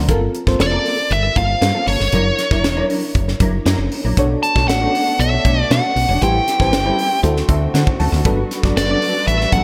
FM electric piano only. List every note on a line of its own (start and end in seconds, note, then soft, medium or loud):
0.00 0.11 A#3 soft
0.00 0.09 C4 medium
0.00 0.11 D4 medium
0.00 0.09 F4 medium
0.00 0.11 F#4 medium
0.00 0.10 A#4 loud
0.00 0.21 C5 medium
0.00 0.10 D5 medium
0.00 0.11 F#5 medium
0.00 0.10 A#5 medium
0.09 0.40 C4 medium
0.09 0.40 F4 medium
0.09 0.40 A4 medium
0.09 0.40 A#4 loud
0.47 0.68 C4 medium
0.47 0.68 F4 medium
0.47 0.68 A4 medium
0.47 0.68 C5 medium
0.72 1.55 C4 medium
0.72 1.55 F4 medium
0.72 1.55 A4 medium
0.72 1.55 A#4 medium
2.13 2.44 D4 medium
2.13 2.44 E4 medium
2.13 2.44 A#4 medium
2.13 2.44 C#5 medium
2.51 2.72 D4 medium
2.51 2.72 E4 medium
2.51 2.72 A#4 medium
2.51 2.72 C#5 medium
2.77 3.59 D4 medium
2.77 3.59 E4 medium
2.77 3.59 A#4 medium
2.77 3.60 C#5 medium
4.17 4.48 D4 loud
4.17 4.48 F#4 medium
4.17 4.49 A4 medium
4.17 4.49 C#5 loud
4.55 4.76 D4 medium
4.55 4.76 F#4 medium
4.55 4.76 A4 medium
4.55 4.76 C#5 medium
4.81 5.63 D4 medium
4.81 5.63 F#4 medium
4.81 5.63 A4 medium
4.81 5.64 C#5 medium
6.21 6.52 E4 medium
6.21 6.52 G4 medium
6.21 6.52 B4 medium
6.21 6.53 C5 medium
6.60 6.80 E4 medium
6.60 6.80 G4 medium
6.60 6.80 B4 medium
6.60 6.81 C5 medium
6.85 7.22 E4 medium
6.85 7.24 G4 medium
6.85 7.24 B4 medium
6.85 7.23 C5 medium
7.23 8.05 E4 medium
7.23 8.06 F#4 medium
7.23 8.06 A4 medium
7.23 8.06 C5 loud
7.49 7.73 E5 medium
7.74 7.98 F#5 medium
7.99 8.23 A5 medium
8.25 8.56 D4 medium
8.25 8.56 F#4 medium
8.25 8.56 A4 medium
8.25 8.57 B4 loud
8.64 8.84 D4 medium
8.64 8.84 F#4 medium
8.64 8.85 A4 medium
8.64 8.85 D5 medium
8.89 9.64 D4 medium
8.89 9.64 F#4 medium
8.89 9.64 A4 medium
8.89 9.64 D5 medium